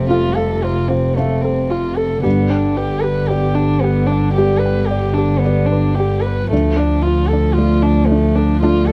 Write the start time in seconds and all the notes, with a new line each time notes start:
Already playing: F1 C3 C4 A4 F5
0.09 C4 F4 A4 F5
0.35 A4 F5
0.64 F4 C5
0.88 C4 F4
1.16 A3 C4 A4 C5 F5
1.41 C4 A4
1.70 F4
1.97 A4
2.23 G1 G2 D3 B3 G4
2.50 D4 G5
2.77 G4 B4
3.01 G4 B4
3.28 B3 G4 B4 D5
3.55 D4 G5
3.81 B3 G4
4.07 D4
4.12 D5
4.33 G4
4.37 B3 G4 D5
4.59 B4
4.66 G5
4.86 G4
4.91 D5
5.13 D4
5.18 G4
5.39 B3
5.45 B3 G4 D5
5.66 D4
5.72 B4
5.95 G4
6.00 G4
6.22 B4
6.27 B4
6.50 D2 F3 A3 D4
6.77 D4 D5
7.02 F4
7.07 F4
7.28 A4
7.33 D4
7.54 A3 F4
7.58 F4 D5
7.82 D4 D5
8.07 A3
8.12 D4
8.35 D4 A4
8.61 A3 D4 F4 D5
8.87 A4 D5